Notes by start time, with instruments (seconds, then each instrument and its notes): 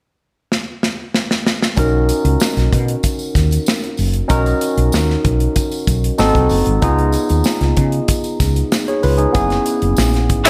0.52 snare
0.83 snare
1.14 snare
1.31 snare
1.47 snare
1.62 snare
1.76 fretless electric bass B1, tine electric piano C#4 D#4 F#4 A#4, kick, closed hi-hat, tambourine
2.09 closed hi-hat, tambourine
2.25 fretless electric bass C#2, closed hi-hat
2.40 snare, tambourine
2.57 fretless electric bass B1, snare, closed hi-hat
2.73 fretless electric bass B2, kick, closed hi-hat
2.88 closed hi-hat
3.03 kick, closed hi-hat, tambourine
3.19 tambourine
3.35 fretless electric bass D#2, kick, snare, closed hi-hat, tambourine
3.51 closed hi-hat, tambourine
3.66 snare, tambourine
3.84 closed hi-hat
3.97 fretless electric bass F#1, open hi-hat, tambourine
4.14 closed hi-hat
4.28 fretless electric bass B1, tine electric piano C#4 D#4 F#4 A#4, kick, closed hi-hat, tambourine
4.46 closed hi-hat, tambourine
4.61 closed hi-hat, tambourine
4.77 fretless electric bass B1, closed hi-hat
4.92 fretless electric bass D#2, snare, tambourine
5.10 snare
5.25 fretless electric bass B1, kick, closed hi-hat
5.40 closed hi-hat
5.56 kick, closed hi-hat, tambourine
5.71 closed hi-hat, tambourine
5.87 fretless electric bass B1, kick, closed hi-hat, tambourine
6.04 closed hi-hat
6.18 fretless electric bass G#1, tine electric piano C4 D#4 F#4 A4, snare, tambourine
6.35 fretless electric bass C2, kick, closed hi-hat
6.49 fretless electric bass F#1, open hi-hat, tambourine
6.66 fretless electric bass G#1, closed hi-hat
6.81 fretless electric bass C#2, tine electric piano B3 D#4 F4 G#4, kick, closed hi-hat, tambourine
6.99 closed hi-hat
7.12 closed hi-hat, tambourine
7.29 fretless electric bass D#2, closed hi-hat, tambourine
7.44 snare, tambourine
7.61 fretless electric bass C#2, snare, closed hi-hat
7.77 fretless electric bass C#3, kick, closed hi-hat
7.92 closed hi-hat
8.08 kick, closed hi-hat, tambourine
8.24 closed hi-hat, tambourine
8.40 fretless electric bass C#2, kick, snare, closed hi-hat, tambourine
8.56 closed hi-hat
8.72 snare, tambourine
8.88 tine electric piano G#4 C#5, closed hi-hat
9.03 fretless electric bass C#2, tine electric piano F4 B4, open hi-hat, tambourine
9.18 tine electric piano D#4 G#4, closed hi-hat
9.32 fretless electric bass F#1, tine electric piano B3 C#4 E4 G#4, kick, closed hi-hat, tambourine
9.50 snare, closed hi-hat, tambourine
9.66 closed hi-hat, tambourine
9.82 fretless electric bass F#1, closed hi-hat
9.97 fretless electric bass A#1, snare, tambourine
10.14 snare, closed hi-hat
10.30 fretless electric bass G#1, kick, closed hi-hat
10.45 horn section G#3 C#4 E4 C#5, closed hi-hat